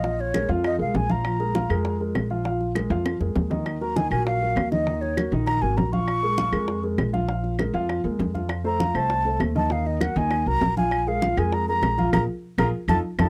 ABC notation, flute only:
X:1
M:4/4
L:1/8
Q:1/4=198
K:Bbm
V:1 name="Flute"
e d2 z e f a b- | b4- b z3 | z8 | z b a a f3 e- |
e d2 z b a b d'- | d'4- d' z3 | z8 | z b2 =a3 z a |
f e g a2 b2 a- | a f2 a b b3 | b z2 b z =a z a |]